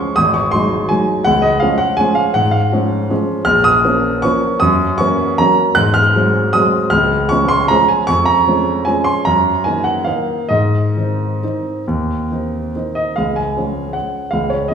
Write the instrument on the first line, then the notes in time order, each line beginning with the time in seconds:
grand piano
Already playing: F3 G#3 C#4 C#6
0.16 G#1 D#6
0.34 C#6
0.52 F#3 G#3 D#4 C6
0.89 F#3 G#3 D#4 G#5
1.24 C#2 F#5
1.42 D#5
1.60 F3 G#3 C#4 F5
1.78 F#5
1.97 F3 G#3 C#4 G#5
2.15 F5
2.34 G#2 F#5
2.51 F5
2.72 F3 G#3 C#4
3.10 F3 G#3 C#4
3.45 A#1 F6
3.64 D#6
3.84 F3 A#3 C#4
4.22 F3 A#3 C#4 C#6
4.60 F#2 D#6
4.98 F#3 A#3 C#4 C#6
5.38 F#3 A#3 C#4 A#5
5.75 G#2 F#6
5.94 F6
6.16 F#3 G#3 C4
6.53 F#3 G#3 C4 D#6
6.90 C#2 F6
7.29 F3 G#3 C#4 C#6
7.49 C6
7.68 F3 G#3 C#4 A#5
7.88 G#5
8.07 F2 C#6
8.26 A#5
8.47 F3 G#3 C#4
8.85 F3 G#3 C#4 G#5
9.04 C6
9.25 F#2 A#5
9.64 D#3 A#3 D#4 G#5
9.84 F#5
10.05 D#3 A#3 D#4 F5
10.49 G#2 D#5
10.97 D#3 C4 D#4
11.43 D#3 C4 D#4
11.88 D#2
12.32 D#3 C4 D#4
12.76 D#3 C4 D#4
12.95 D#5
13.16 C#2 F5
13.36 G#5
13.57 F3 G#3 C#4
13.93 F#5
14.31 C#2 F5
14.50 C#5
14.68 F3 G#3 C#4 D#5